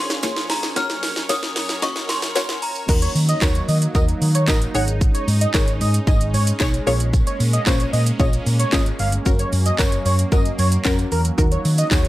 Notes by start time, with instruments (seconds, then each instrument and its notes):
Already playing: analog synth pad A#2 F3 C#4 G#4 C#5, synth bell C6
0.10 snare, shaker
0.23 synth stab A#3 F4 G#4 C#5, kick, snare, closed hi-hat, tambourine, shaker
0.36 snare, shaker
0.50 synth bell A#5, snare, open hi-hat, tambourine, shaker
0.63 snare, shaker
0.76 analog synth pad F#2 F#3 A#4 C#5, synth stab A#3 C#4 F#4 C#5, synth bell F6, kick, snare, closed hi-hat, tambourine, shaker
0.90 snare, shaker
1.03 snare, open hi-hat, tambourine, shaker
1.16 snare, shaker
1.29 synth stab A#3 C#4 F#4 C#5, synth bell D#6, kick, snare, closed hi-hat, tambourine, shaker
1.43 snare, shaker
1.56 snare, open hi-hat, tambourine, shaker
1.69 snare, shaker
1.82 synth stab A#3 C#4 F#4 D#5, synth bell C#6, kick, snare, closed hi-hat, tambourine, shaker
1.96 snare, shaker
2.09 synth bell C6, snare, open hi-hat, tambourine, shaker
2.22 snare, shaker
2.35 synth stab A#3 C#4 F#4 C#5, snare, closed hi-hat, tambourine, shaker
2.49 snare, shaker
2.62 synth bell A#5, open hi-hat, shaker
2.75 shaker
2.88 fingered electric bass D#2, analog synth pad F#3 A#3 D#4, synth stab D#4 F#4 A#4, kick, crash, shaker
3.02 analog synth lead C#5, closed hi-hat, shaker
3.15 fingered electric bass D#3, open hi-hat, tambourine, shaker
3.29 analog synth lead D#5, closed hi-hat, shaker
3.41 fingered electric bass D#2, synth stab D#4 F#4 A#4, analog synth lead C#5, kick, snare, clap, tambourine, shaker
3.55 closed hi-hat, shaker
3.68 fingered electric bass D#3, analog synth lead D#5, open hi-hat, tambourine, shaker
3.82 closed hi-hat, shaker
3.95 fingered electric bass D#2, synth stab D#4 F#4 A#4, analog synth lead D#5, kick, tambourine, shaker
4.08 closed hi-hat, shaker
4.21 fingered electric bass D#3, open hi-hat, tambourine, shaker
4.35 analog synth lead C#5, closed hi-hat, shaker
4.48 fingered electric bass A1, synth stab D#4 F#4 A#4, analog synth lead D#5, kick, snare, clap, tambourine, shaker
4.62 closed hi-hat, shaker
4.74 fingered electric bass G#1, analog synth pad G#3 C#4, synth stab D#4 G#4 C#5, analog synth lead F#5, open hi-hat, shaker
4.88 closed hi-hat, shaker
5.01 kick, shaker
5.14 analog synth lead C#5, closed hi-hat, shaker
5.28 fingered electric bass G#2, open hi-hat, tambourine, shaker
5.41 analog synth lead D#5, closed hi-hat, shaker
5.54 fingered electric bass G#1, synth stab D#4 G#4 A#4, analog synth lead C#5, kick, snare, clap, tambourine, shaker
5.68 closed hi-hat, shaker
5.81 fingered electric bass G#2, analog synth lead D#5, open hi-hat, tambourine, shaker
5.94 closed hi-hat, shaker
6.07 fingered electric bass G#1, synth stab D#4 G#4 D#5, analog synth lead D#5, kick, tambourine, shaker
6.21 closed hi-hat, shaker
6.34 fingered electric bass G#2, analog synth lead C#5, open hi-hat, tambourine, shaker
6.47 closed hi-hat, shaker
6.60 fingered electric bass B1, synth stab D#4 G#4 C#5, kick, snare, clap, tambourine, shaker
6.74 closed hi-hat, shaker
6.87 fingered electric bass A#1, synth stab A#3 C#4 F4 G#4 C#5, analog synth pad A#3, analog synth lead C#5, open hi-hat, tambourine, shaker
7.00 closed hi-hat, shaker
7.13 kick, tambourine, shaker
7.27 analog synth lead C#5, closed hi-hat, shaker
7.40 fingered electric bass A#2, open hi-hat, tambourine, shaker
7.53 analog synth lead D#5, closed hi-hat, shaker
7.66 fingered electric bass A#1, synth stab A#3 C#4 F4 G#4 C5, analog synth lead C#5, kick, snare, clap, tambourine, shaker
7.80 closed hi-hat, shaker
7.93 fingered electric bass A#2, analog synth lead D#5, open hi-hat, tambourine, shaker
8.07 closed hi-hat, shaker
8.20 fingered electric bass A#1, synth stab A#3 C#4 F4 G#4 C#5, analog synth lead D#5, kick, tambourine, shaker
8.33 closed hi-hat, shaker
8.46 fingered electric bass A#2, open hi-hat, tambourine, shaker
8.60 analog synth lead C#5, closed hi-hat, shaker
8.72 fingered electric bass G#1, synth stab A#3 C#4 F4 G#4 C#5, analog synth lead D#5, kick, snare, clap, tambourine, shaker
8.86 closed hi-hat, shaker
8.99 fingered electric bass G1, analog synth lead F5, open hi-hat, tambourine, shaker
9.12 closed hi-hat, shaker
9.26 fingered electric bass F#1, analog synth pad F#3, synth stab C#4 F#4 A#4, kick, tambourine, shaker
9.39 analog synth lead C#5, closed hi-hat, shaker
9.53 fingered electric bass F#2, open hi-hat, tambourine, shaker
9.66 analog synth lead D#5, closed hi-hat, shaker
9.79 fingered electric bass F#1, synth stab C#4 F#4 A#4, analog synth lead C#5, kick, snare, clap, tambourine, shaker
9.92 closed hi-hat, shaker
10.05 fingered electric bass F#2, analog synth lead C#5, open hi-hat, tambourine, shaker
10.19 closed hi-hat, shaker
10.32 fingered electric bass F#1, synth stab C#4 F#4 A#4, analog synth lead D#5, kick, tambourine, shaker
10.45 closed hi-hat, shaker
10.59 fingered electric bass F#2, analog synth lead C#5, open hi-hat, tambourine, shaker
10.72 closed hi-hat, shaker
10.85 fingered electric bass F2, synth stab C#4 F#4 A#4, kick, snare, clap, tambourine, shaker
10.99 closed hi-hat, shaker
11.12 fingered electric bass E2, analog synth lead A#4, open hi-hat, shaker
11.25 closed hi-hat, shaker
11.38 fingered electric bass D#2, synth stab D#4 F#4 A#4, analog synth pad D#4, kick, shaker
11.52 analog synth lead C#5, closed hi-hat, shaker
11.65 fingered electric bass D#3, open hi-hat, tambourine, shaker
11.78 analog synth lead D#5, closed hi-hat, shaker
11.91 fingered electric bass D#2, synth stab D#4 F#4 G#4, analog synth lead C#5, kick, snare, clap, tambourine, shaker
12.05 closed hi-hat, shaker